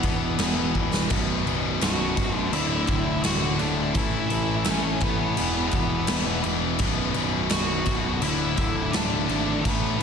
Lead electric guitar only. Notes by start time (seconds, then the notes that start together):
Already playing: B3 B4
1.83 F#4 F#5
2.38 E5
2.53 E4 E5
2.87 E4 E5
3.24 F#4 F#5
3.60 D4 D5
3.96 E4 E5
4.68 C#4 C#5
5.02 B3 B4
7.51 F#4 F#5
8.22 E4 E5
8.58 E4 E5
8.92 D4 D5
9.61 B3 B4